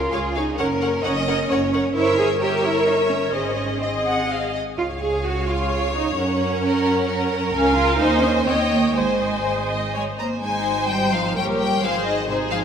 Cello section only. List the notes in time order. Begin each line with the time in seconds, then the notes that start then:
Already playing: F4
0.36 D#4
0.59 C#4
1.96 E4
2.18 G#4
2.41 G4
2.64 E4
2.86 D#4
3.10 C#4
3.33 C#4
3.81 C4
4.78 F4
5.01 G#4
5.25 F#4
5.48 F4
5.94 D#4
6.16 C#4
7.54 C#4
7.76 F4
7.99 D#4
8.22 C#4
8.46 C4
8.70 A#3
8.95 G#3
9.95 G#3
10.19 A#3
10.43 G#3
10.89 G3
11.13 F3
11.36 G3
11.59 G3
11.82 F3
12.06 D#3
12.28 C3
12.51 F3